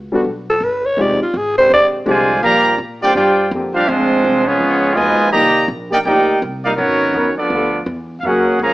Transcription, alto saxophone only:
0, 0, Header, 1, 2, 480
1, 0, Start_track
1, 0, Tempo, 362976
1, 1305, Time_signature, 4, 2, 24, 8
1, 11551, End_track
2, 0, Start_track
2, 0, Title_t, "Alto saxophone"
2, 0, Program_c, 0, 65
2, 660, Note_on_c, 0, 69, 106
2, 853, Note_on_c, 0, 71, 96
2, 873, Note_off_c, 0, 69, 0
2, 1134, Note_on_c, 0, 73, 98
2, 1153, Note_off_c, 0, 71, 0
2, 1342, Note_on_c, 0, 74, 107
2, 1362, Note_off_c, 0, 73, 0
2, 1617, Note_off_c, 0, 74, 0
2, 1625, Note_on_c, 0, 65, 85
2, 1817, Note_on_c, 0, 68, 99
2, 1837, Note_off_c, 0, 65, 0
2, 2081, Note_off_c, 0, 68, 0
2, 2088, Note_on_c, 0, 72, 121
2, 2253, Note_off_c, 0, 72, 0
2, 2299, Note_on_c, 0, 74, 108
2, 2470, Note_off_c, 0, 74, 0
2, 11551, End_track
0, 0, End_of_file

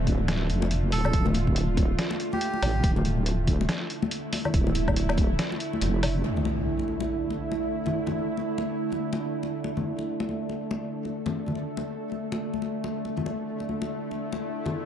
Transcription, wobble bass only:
0, 0, Header, 1, 2, 480
1, 0, Start_track
1, 0, Key_signature, -1, "minor"
1, 0, Tempo, 425532
1, 1279, Time_signature, 4, 2, 24, 8
1, 16755, End_track
2, 0, Start_track
2, 0, Title_t, "Wobble bass"
2, 0, Program_c, 0, 39
2, 0, Note_on_c, 0, 26, 99
2, 559, Note_on_c, 0, 29, 89
2, 576, Note_off_c, 0, 26, 0
2, 1039, Note_on_c, 0, 26, 97
2, 1056, Note_off_c, 0, 29, 0
2, 1263, Note_off_c, 0, 26, 0
2, 1279, Note_on_c, 0, 26, 96
2, 2227, Note_off_c, 0, 26, 0
2, 2958, Note_on_c, 0, 33, 94
2, 3183, Note_off_c, 0, 33, 0
2, 3200, Note_on_c, 0, 26, 95
2, 4147, Note_off_c, 0, 26, 0
2, 5119, Note_on_c, 0, 26, 98
2, 6066, Note_off_c, 0, 26, 0
2, 6558, Note_on_c, 0, 29, 85
2, 7026, Note_off_c, 0, 29, 0
2, 16755, End_track
0, 0, End_of_file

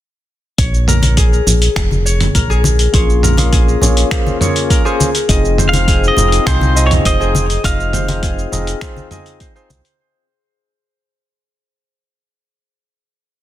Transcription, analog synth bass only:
0, 0, Header, 1, 2, 480
1, 0, Start_track
1, 0, Key_signature, -5, "minor"
1, 0, Tempo, 588235
1, 477, Time_signature, 4, 2, 24, 8
1, 10955, End_track
2, 0, Start_track
2, 0, Title_t, "Analog synth bass"
2, 0, Program_c, 0, 38
2, 477, Note_on_c, 0, 34, 96
2, 1149, Note_off_c, 0, 34, 0
2, 1197, Note_on_c, 0, 34, 87
2, 1378, Note_off_c, 0, 34, 0
2, 1438, Note_on_c, 0, 29, 78
2, 1870, Note_off_c, 0, 29, 0
2, 1918, Note_on_c, 0, 34, 89
2, 2350, Note_off_c, 0, 34, 0
2, 2397, Note_on_c, 0, 34, 100
2, 3070, Note_off_c, 0, 34, 0
2, 3120, Note_on_c, 0, 34, 87
2, 3299, Note_off_c, 0, 34, 0
2, 4317, Note_on_c, 0, 29, 101
2, 4990, Note_off_c, 0, 29, 0
2, 5038, Note_on_c, 0, 29, 88
2, 5218, Note_off_c, 0, 29, 0
2, 5276, Note_on_c, 0, 36, 75
2, 5709, Note_off_c, 0, 36, 0
2, 5755, Note_on_c, 0, 29, 93
2, 6189, Note_off_c, 0, 29, 0
2, 6235, Note_on_c, 0, 29, 98
2, 6909, Note_off_c, 0, 29, 0
2, 6957, Note_on_c, 0, 29, 83
2, 7138, Note_off_c, 0, 29, 0
2, 7917, Note_on_c, 0, 36, 100
2, 8009, Note_off_c, 0, 36, 0
2, 10955, End_track
0, 0, End_of_file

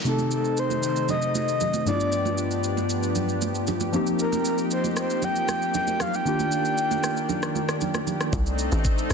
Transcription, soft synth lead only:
0, 0, Header, 1, 2, 480
1, 0, Start_track
1, 0, Tempo, 517241
1, 50, Time_signature, 4, 2, 24, 8
1, 8480, End_track
2, 0, Start_track
2, 0, Title_t, "Soft synth lead"
2, 0, Program_c, 0, 80
2, 68, Note_on_c, 0, 69, 89
2, 283, Note_off_c, 0, 69, 0
2, 309, Note_on_c, 0, 69, 89
2, 548, Note_on_c, 0, 72, 103
2, 562, Note_off_c, 0, 69, 0
2, 779, Note_off_c, 0, 72, 0
2, 786, Note_on_c, 0, 72, 98
2, 1002, Note_off_c, 0, 72, 0
2, 1024, Note_on_c, 0, 75, 105
2, 1241, Note_off_c, 0, 75, 0
2, 1263, Note_on_c, 0, 75, 106
2, 1703, Note_off_c, 0, 75, 0
2, 1745, Note_on_c, 0, 74, 101
2, 2420, Note_off_c, 0, 74, 0
2, 3903, Note_on_c, 0, 70, 93
2, 4120, Note_off_c, 0, 70, 0
2, 4143, Note_on_c, 0, 70, 91
2, 4248, Note_off_c, 0, 70, 0
2, 4383, Note_on_c, 0, 72, 100
2, 4488, Note_off_c, 0, 72, 0
2, 4623, Note_on_c, 0, 72, 98
2, 4862, Note_on_c, 0, 79, 115
2, 4876, Note_off_c, 0, 72, 0
2, 5336, Note_off_c, 0, 79, 0
2, 5341, Note_on_c, 0, 79, 109
2, 5581, Note_on_c, 0, 77, 97
2, 5595, Note_off_c, 0, 79, 0
2, 5709, Note_on_c, 0, 79, 107
2, 5723, Note_off_c, 0, 77, 0
2, 7142, Note_off_c, 0, 79, 0
2, 8480, End_track
0, 0, End_of_file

